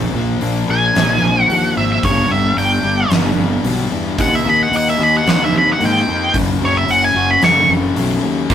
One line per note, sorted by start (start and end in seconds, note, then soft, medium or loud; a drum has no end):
0.00 0.12 A#2 medium
0.00 0.13 F3 medium
0.00 0.13 A#3 medium
0.13 0.34 A#1 medium
0.13 0.40 A#2 medium
0.13 0.40 F3 medium
0.13 0.40 A#3 medium
0.41 0.62 A#1 medium
0.41 0.67 A#2 medium
0.41 0.67 F3 medium
0.41 0.67 A#3 medium
0.41 1.76 D4 medium
0.41 open hi-hat medium
0.68 0.89 A#1 medium
0.68 0.93 A#2 medium
0.68 0.94 F3 medium
0.68 0.94 A#3 medium
0.68 2.03 A#4 medium
0.68 1.43 G#5 medium
0.94 1.16 A#1 medium
0.94 1.21 A#2 medium
0.94 1.21 F3 medium
0.94 1.21 A#3 medium
0.94 snare loud
0.94 open hi-hat medium
1.22 1.43 A#1 medium
1.22 1.48 A#2 medium
1.22 1.47 F3 medium
1.22 1.48 A#3 medium
1.43 1.74 F#5 medium
1.49 1.70 D#2 medium
1.49 1.75 A#2 medium
1.49 1.75 F3 medium
1.49 1.76 A#3 medium
1.49 open hi-hat medium
1.76 1.97 G#1 medium
1.76 2.01 A#2 medium
1.76 2.01 F3 medium
1.76 2.02 A#3 medium
1.76 1.90 E5 medium
1.92 2.05 E5 medium
2.02 2.24 G1 medium
2.02 2.28 G2 medium
2.02 2.29 D3 medium
2.02 2.29 G3 loud
2.02 2.30 C#5 medium
2.02 kick loud
2.02 open hi-hat medium
2.30 2.51 G1 medium
2.30 2.55 G2 medium
2.30 2.56 D3 medium
2.30 2.57 G3 medium
2.30 2.57 E5 medium
2.56 2.78 G1 medium
2.56 2.83 G2 medium
2.56 2.83 D3 medium
2.56 2.84 G3 medium
2.56 3.92 D4 medium
2.56 3.10 G5 medium
2.56 open hi-hat soft
2.83 3.04 G1 medium
2.83 3.11 G2 medium
2.83 3.11 D3 medium
2.83 3.11 G3 medium
2.83 4.19 G4 medium
3.09 3.31 G1 medium
3.09 3.37 G2 medium
3.09 3.37 D3 medium
3.09 3.37 G3 medium
3.09 3.64 B3 medium
3.09 snare loud
3.09 open hi-hat medium
3.36 3.57 G1 loud
3.36 3.64 G2 medium
3.36 3.65 D3 medium
3.36 3.65 G3 medium
3.63 3.85 B1 medium
3.63 3.91 G2 medium
3.63 3.91 D3 medium
3.63 3.91 G3 medium
3.63 4.19 B3 medium
3.63 open hi-hat medium
3.92 4.13 E2 medium
3.92 4.17 G2 medium
3.92 4.17 D3 medium
3.92 4.17 G3 medium
4.18 4.39 D#2 medium
4.18 4.43 D#3 medium
4.18 4.44 A#3 medium
4.18 4.44 D#4 medium
4.18 4.35 F#5 loud
4.18 kick loud
4.18 open hi-hat medium
4.35 4.47 E5 medium
4.44 4.67 D#2 medium
4.44 4.70 D#3 medium
4.44 4.70 A#3 medium
4.44 4.70 D#4 medium
4.49 4.61 B5 medium
4.63 4.74 F#5 medium
4.71 4.93 D#2 medium
4.71 4.98 D#3 medium
4.71 4.98 A#3 medium
4.71 4.99 D#4 medium
4.71 open hi-hat medium
4.77 4.88 F#5 medium
4.90 5.01 E5 medium
4.99 5.20 D#2 medium
4.99 5.24 D#3 medium
4.99 5.24 A#3 medium
4.99 5.25 D#4 medium
4.99 6.34 G4 medium
5.03 5.15 B5 medium
5.17 5.28 F#5 medium
5.25 5.47 D#2 medium
5.25 5.50 D#3 medium
5.25 5.51 A#3 medium
5.25 5.51 D#4 loud
5.25 snare loud
5.25 open hi-hat medium
5.31 5.44 F#5 medium
5.44 5.55 E5 medium
5.51 5.74 D#2 medium
5.51 5.77 D#3 medium
5.51 5.78 A#3 medium
5.51 5.78 D#4 medium
5.58 5.69 B5 medium
5.73 5.83 F#5 loud
5.78 6.01 G#2 medium
5.78 6.05 D#3 medium
5.78 6.06 A#3 medium
5.78 6.06 D#4 medium
5.78 open hi-hat soft
5.85 6.35 G5 loud
6.06 6.29 F2 medium
6.06 6.32 D#3 medium
6.06 6.32 A#3 loud
6.06 6.33 D#4 medium
6.34 6.55 F#1 medium
6.34 6.59 F#2 medium
6.34 6.59 C#3 loud
6.34 6.60 F#3 loud
6.34 kick loud
6.34 open hi-hat medium
6.60 6.82 F#1 medium
6.60 6.85 F#2 medium
6.60 6.86 C#3 medium
6.60 6.86 F#3 medium
6.65 6.76 C#5 medium
6.77 6.91 E5 medium
6.86 7.09 F#1 medium
6.86 7.13 F#2 medium
6.86 7.13 C#3 medium
6.86 7.14 F#3 loud
6.86 8.24 C#4 medium
6.86 open hi-hat medium
6.91 7.04 F#5 medium
7.04 7.29 G#5 medium
7.14 7.36 F#1 medium
7.14 7.41 F#2 medium
7.14 7.42 C#3 medium
7.14 7.42 F#3 medium
7.14 8.51 F#4 medium
7.31 7.43 B5 medium
7.42 7.63 F#1 medium
7.42 7.68 F#2 medium
7.42 7.69 C#3 medium
7.42 7.69 F#3 medium
7.42 7.96 A3 medium
7.42 7.69 C#6 loud
7.42 snare loud
7.42 open hi-hat medium
7.69 7.90 F#1 medium
7.69 7.94 F#2 medium
7.69 7.94 C#3 medium
7.69 7.95 F#3 medium
7.95 8.17 B1 medium
7.95 8.22 F#2 medium
7.95 8.22 C#3 medium
7.95 8.23 F#3 medium
7.95 8.51 A3 medium
7.95 open hi-hat medium
8.23 8.44 D#2 medium
8.23 8.48 F#2 medium
8.23 8.49 C#3 medium
8.23 8.49 F#3 medium
8.50 8.54 A#1 medium
8.50 8.54 A#2 medium
8.50 8.54 F3 medium
8.50 8.54 A#3 medium
8.50 kick loud
8.50 open hi-hat medium